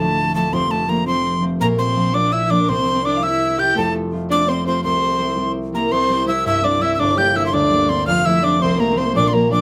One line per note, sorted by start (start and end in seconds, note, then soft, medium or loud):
0.00 0.58 D1 medium
0.00 0.58 D2 medium
0.00 0.33 F3 soft
0.00 0.32 A3 medium
0.00 0.35 A3 soft
0.00 0.88 C4 medium
0.00 0.35 D4 medium
0.00 0.35 A5 medium
0.34 0.58 F3 medium
0.34 0.51 A3 medium
0.34 0.88 A3 soft
0.34 1.96 D4 medium
0.34 0.55 A5 medium
0.52 1.66 F1 medium
0.52 1.66 F2 medium
0.52 0.69 C4 medium
0.52 0.72 C6 loud
0.70 0.87 A3 medium
0.70 0.91 A5 medium
0.88 1.04 F3 soft
0.88 1.06 A3 soft
0.88 1.05 A#3 medium
0.88 1.06 C4 medium
0.88 1.07 A#5 medium
1.06 1.41 F3 medium
1.06 1.42 A3 soft
1.06 1.44 C4 medium
1.06 1.42 C4 medium
1.06 1.45 C6 medium
1.42 1.66 F3 soft
1.42 1.66 A3 soft
1.42 3.05 C4 medium
1.60 2.74 A#1 medium
1.60 2.74 A#2 medium
1.60 1.77 A#3 medium
1.60 1.80 A#4 medium
1.60 1.67 A#5 loud
1.78 2.15 C4 medium
1.78 2.16 C5 medium
1.78 2.16 C6 medium
1.96 2.13 F3 soft
1.96 2.14 A#3 soft
1.96 2.14 D4 medium
2.14 2.49 F3 medium
2.14 2.50 A#3 soft
2.14 2.34 D4 medium
2.14 2.51 D4 medium
2.14 2.34 D5 medium
2.14 2.34 D6 loud
2.32 2.45 E4 medium
2.32 2.52 E5 medium
2.32 2.52 E6 medium
2.45 2.52 E4 medium
2.50 2.74 F3 medium
2.50 4.18 A#3 soft
2.50 2.71 D4 medium
2.50 5.31 D4 medium
2.50 2.61 D5 medium
2.50 2.70 D6 medium
2.61 2.70 A#4 medium
2.68 3.81 C2 medium
2.68 3.81 C3 medium
2.68 2.80 C4 medium
2.68 3.04 C5 medium
2.68 3.07 C6 loud
2.80 2.92 C4 medium
2.93 3.04 C4 medium
3.04 3.21 G3 soft
3.04 3.22 C4 soft
3.04 3.21 D4 medium
3.04 3.23 E4 medium
3.04 3.18 D5 medium
3.04 3.25 D6 medium
3.16 3.24 F5 medium
3.22 3.57 G3 soft
3.22 3.58 C4 soft
3.22 3.60 E4 medium
3.22 3.58 E4 medium
3.22 3.58 E5 medium
3.22 3.61 E6 loud
3.58 3.81 G3 soft
3.58 4.12 C4 soft
3.58 3.82 E4 medium
3.58 3.77 G4 medium
3.58 3.79 G5 medium
3.58 3.77 G6 loud
3.76 4.89 F1 medium
3.76 4.89 F2 medium
3.76 3.94 A3 medium
3.76 3.95 A4 medium
3.76 3.94 A5 loud
4.12 4.30 A3 soft
4.12 4.31 C4 soft
4.12 4.31 F4 medium
4.30 4.66 A3 medium
4.30 4.66 C4 soft
4.30 4.47 D4 medium
4.30 4.67 F4 medium
4.30 4.50 D5 medium
4.30 4.50 D6 loud
4.47 4.65 C4 medium
4.47 4.66 C5 medium
4.47 4.66 C6 loud
4.65 7.24 A3 soft
4.65 4.83 C4 medium
4.65 5.19 C4 soft
4.65 5.26 F4 medium
4.65 4.83 C5 medium
4.65 4.83 C6 medium
4.84 5.92 C2 medium
4.84 5.52 C4 medium
4.84 5.52 C5 medium
4.84 5.52 C6 loud
5.19 5.36 G3 soft
5.19 5.38 C4 soft
5.19 5.38 E4 medium
5.37 5.72 G3 soft
5.37 5.74 C4 soft
5.37 5.74 E4 medium
5.73 5.97 G3 soft
5.73 5.90 A#3 medium
5.73 6.10 C4 soft
5.73 6.10 E4 medium
5.73 5.94 A#4 medium
5.73 5.93 A#5 medium
5.92 7.05 C2 medium
5.92 6.25 C4 medium
5.92 6.30 C5 medium
5.92 6.28 C6 loud
6.10 6.26 G3 medium
6.10 6.27 C4 soft
6.10 6.28 E4 medium
6.27 6.62 G3 medium
6.27 6.63 C4 soft
6.27 6.44 E4 medium
6.27 6.64 E4 medium
6.27 6.45 E5 medium
6.27 6.45 E6 medium
6.45 6.99 G2 medium
6.45 6.63 E4 medium
6.45 6.66 E5 medium
6.45 6.66 E6 medium
6.63 6.80 G3 medium
6.63 6.81 C4 medium
6.63 6.81 D4 medium
6.63 6.82 E4 medium
6.63 6.84 D5 medium
6.63 6.83 D6 medium
6.81 7.05 G3 medium
6.81 8.27 C4 soft
6.81 6.98 E4 medium
6.81 8.14 E4 medium
6.81 7.01 E5 medium
6.81 6.94 E6 medium
6.94 7.16 D4 medium
6.94 7.01 E6 medium
6.99 8.13 G1 medium
6.99 7.59 G2 medium
6.99 7.18 D5 medium
6.99 7.19 D6 loud
7.17 7.34 G3 medium
7.17 7.35 A#3 soft
7.17 7.36 D4 medium
7.17 7.34 G4 medium
7.17 7.37 G5 medium
7.17 7.38 G6 loud
7.35 7.71 G3 medium
7.35 7.72 A#3 soft
7.35 7.72 D4 medium
7.35 7.52 E4 medium
7.35 7.53 E5 medium
7.35 7.46 E6 medium
7.46 7.55 C6 medium
7.53 8.13 D2 medium
7.53 7.91 D4 medium
7.53 8.04 D5 medium
7.53 7.91 D6 loud
7.72 7.88 G3 medium
7.72 7.90 A#3 medium
7.72 7.90 D4 medium
7.89 8.13 G3 medium
7.89 8.33 A#3 soft
7.89 8.07 C4 medium
7.89 9.33 D4 medium
7.89 8.06 C6 medium
8.07 9.20 F1 medium
8.07 8.66 F2 medium
8.07 8.24 F4 medium
8.07 8.27 F5 medium
8.07 8.27 F6 loud
8.25 8.43 F3 medium
8.25 8.44 A3 medium
8.25 8.44 C4 medium
8.25 8.43 E4 medium
8.25 8.44 E5 medium
8.25 8.46 E6 loud
8.43 8.78 F3 medium
8.43 8.80 A3 soft
8.43 8.80 C4 medium
8.43 8.60 D4 medium
8.43 8.61 D5 medium
8.43 8.64 D6 loud
8.61 9.20 C2 medium
8.61 8.80 C4 medium
8.61 8.78 C5 medium
8.61 8.82 C6 loud
8.79 8.96 F3 medium
8.79 8.97 A3 medium
8.79 8.93 A#3 medium
8.79 8.98 C4 medium
8.79 8.99 A#4 medium
8.79 8.99 A#5 medium
8.92 9.06 C4 medium
8.97 9.20 F3 medium
8.97 9.21 A3 soft
8.97 9.61 C4 medium
8.97 9.18 C5 medium
8.97 9.15 C6 medium
9.04 9.16 A#3 medium
9.15 9.61 A#1 medium
9.15 9.61 A#2 medium
9.15 9.33 D4 medium
9.15 9.35 D5 medium
9.15 9.29 D6 loud
9.28 9.35 C6 medium
9.32 9.50 F3 medium
9.32 9.51 A#3 medium
9.32 9.50 A#3 medium
9.32 9.51 D4 medium
9.32 9.52 A#4 medium
9.32 9.51 A#5 medium
9.51 9.61 F3 medium
9.51 9.61 A#3 soft
9.51 9.61 D4 medium
9.51 9.61 D5 medium
9.51 9.61 D6 medium